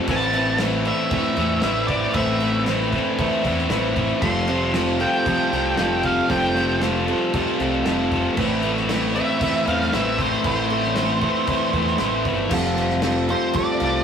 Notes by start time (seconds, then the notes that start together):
Already playing: A4
0.07 A1 A2 E3 A3 C4 E4 B4 A5, kick, crash
0.31 A3 C4 E4, crash
0.35 A2 E3 A3
0.58 A2 E3 A3 C4 E4 B4, snare, crash
0.62 E3 A3
0.85 A2 E3 A3 C4 E4 B4 E5, crash
1.11 A2 E3 A3 C4 E4 B4, kick, crash
1.37 E2 A2 E3 A3 C4 E4 B4, crash
1.62 A1 A2 E3 A3 C4 B4, snare, crash
1.67 E4 B4
1.87 A2 E3 E4 D5, kick, crash
1.91 A3
2.14 A1 A2 E3 A3 C4 E4 B4 E5, kick, crash
2.40 A2 E3 A3 C4 E4, crash
2.64 A2 E3 A3 C4, snare, crash
2.69 E3 A3 E4 B4
2.92 A2 E3 A3 C4 E4 B4, kick, crash
3.18 A2 E3 A3 C4 E4 B4, kick, crash
3.44 E2 A2 E3 A3 C4 E4 B4, kick, crash
3.58 snare
3.69 A1 A2 E3 A3 C4 E4 B4, snare, crash
3.96 A2 E3 A3 E4, kick, crash
4.21 F1 F2 C3 F3 G3 A3 C4 F4 A4 C6, kick, crash
4.46 F2 C3 F3 G3 A3 C4 F4, crash
4.72 F2 C3 F3 G3 A3 C4 F4, snare, crash
4.77 A4
5.00 F2 C3 F3 A3 C4 F4 A4 G5, crash
5.25 F2 C3 F3 G3 C4 F4 G4 A4, kick, crash
5.49 C2 F2 A3 F4 A4, crash
5.53 C3 F3 C4 F4
5.75 F1 F3 G3 A3 C4, snare, crash
5.79 F2 C3 F3 F4 A4
6.03 F2 C3 F3 G4 F5, kick, crash
6.28 F1 F2 C3 F3 G3 A3 C4 F4 A4 G5, kick, crash
6.54 F2 C3 F3 G3 C4 F4, crash
6.58 A3
6.78 F2 F3 G3 A3 C4 F4, snare, crash
6.83 C3 F3 A4
7.06 F2 C3 F3 A3 C4 F4 A4, crash
7.33 F2 C3 F3 G3 C4 F4 G4 A4, kick, crash
7.59 C2 F2 C3 F3 A3 C4 F4 A4, crash
7.84 F1 F3 G3 A3 C4 F4 A4, snare, crash
7.88 F2 C3 F3
8.12 F2 C3 F3 G4, kick, crash
8.36 A1 A2 E3 A3 C4 E4 B4, kick, crash
8.41 A3
8.61 A3 C4 E4, crash
8.65 A2 E3 A3
8.77 snare
8.87 A2 E3 A3 C4 E4, snare, crash
8.91 A2 E3 A3 B4
9.15 A2 E3 A3 C4 E4 B4 E5, crash
9.41 A2 E3 A3 C4 E4 B4, kick, crash
9.66 E2 A2 E3 A3 C4 E4 B4 F5, crash
9.81 snare
9.91 A1 A2 E3 A3 C4 E4 B4 E5, snare, crash
10.19 A2 E3 A3 E4 C5, kick, crash
10.43 A1 A2 E3 A3 C4 E4 B4 C5, kick, crash
10.69 A2 E3 A3 C4 E4, crash
10.83 snare
10.95 A2 E3 A3 C4 E4, snare, crash
10.99 B4
11.21 A2 E3 A3 C4 E4 B4, kick, crash
11.47 A2 E3 A3 C4 E4 B4, kick, crash
11.73 E2 A2 E3 A3 C4 E4 B4, kick, crash
11.86 snare
11.98 A1 E3 A3 C4 E4 B4, snare, crash
12.02 A2 E3 A3
12.25 G1 A2 E3 A3 E4, kick, crash
12.50 F1 F3 G3 A3 C4 F4 A4, kick, crash
12.75 A3 C4 F4, crash
12.90 snare
13.01 F3 G3 A3 C4 F4, snare, crash
13.05 A4
13.28 A3 C4 F4 A4 C5, crash
13.53 F3 G3 C4 F4 A4 D5, kick, crash
13.80 C2 A3 F4 A4, crash
13.84 C4